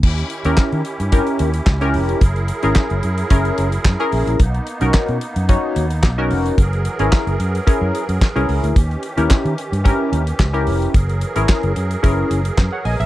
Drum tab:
CC |x---------------|----------------|----------------|----------------|
HH |-xxx-xxxxxxx-xox|xxxx-xxxxxxx-xox|xxxx-xxxx-xx--ox|xxxx-xxxx-xx-xox|
CP |----x-------x---|----x-------x---|----x-------x---|----x-------x---|
SD |----o-------o---|----o-------o---|----o-------o---|----o-------o---|
BD |o---o---o---o---|o---o---o---o---|o---o---o---o---|o---o---o---o---|

CC |----------------|----------------|
HH |xxxx-xxxx-xx-xox|xxxx-xxxx-xx--ox|
CP |----x-------x---|----x-------x---|
SD |----o-------o---|----o-------o---|
BD |o---o---o---o---|o---o---o---o---|